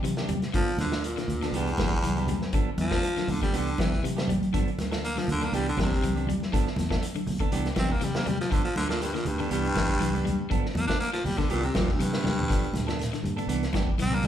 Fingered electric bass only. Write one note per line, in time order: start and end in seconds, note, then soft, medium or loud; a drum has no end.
0.03 0.22 C3 loud
0.28 0.47 C3 medium
0.54 0.64 G1 medium
0.77 1.15 D2 medium
1.28 1.47 D2 medium
1.52 1.71 C2 loud
1.79 1.89 G2 medium
1.91 muted fingered electric bass stroke soft
2.03 2.32 C2 loud
2.41 muted fingered electric bass stroke soft
2.53 2.63 G1 medium
2.78 2.97 E2 medium
3.28 3.38 B1 medium
3.53 3.72 C2 loud
3.79 3.98 B1 medium
4.03 4.30 C3 loud
4.28 4.47 A1 medium
4.54 4.64 G1 medium
4.78 5.16 D2 medium
5.28 5.47 D2 medium
5.52 5.71 C2 loud
5.78 5.88 G2 medium
5.91 muted fingered electric bass stroke soft
6.01 6.30 C2 loud
6.40 muted fingered electric bass stroke soft
6.53 6.62 G1 medium
6.77 6.96 E2 loud
7.27 7.37 B1 medium
7.52 7.71 C2 loud
7.76 7.95 B1 medium
8.02 8.21 C3 loud
8.27 8.45 C3 medium
8.51 8.61 G1 medium
8.77 9.14 D2 medium
9.27 9.46 D2 medium
9.51 9.70 C2 medium
9.76 9.86 G2 medium
9.89 muted fingered electric bass stroke soft
10.00 10.29 C2 loud
10.38 muted fingered electric bass stroke soft
10.51 10.61 G1 medium
10.75 10.94 E2 loud
11.24 11.34 B1 medium
11.49 11.68 C2 medium
11.74 11.93 B1 medium
11.99 12.18 C3 medium
12.23 12.43 C3 medium
12.49 12.59 G1 medium
12.73 13.11 D2 medium
13.23 13.42 G2 medium
13.47 13.67 C2 loud
13.74 13.84 G2 medium
13.87 muted fingered electric bass stroke soft
13.98 14.27 C2 medium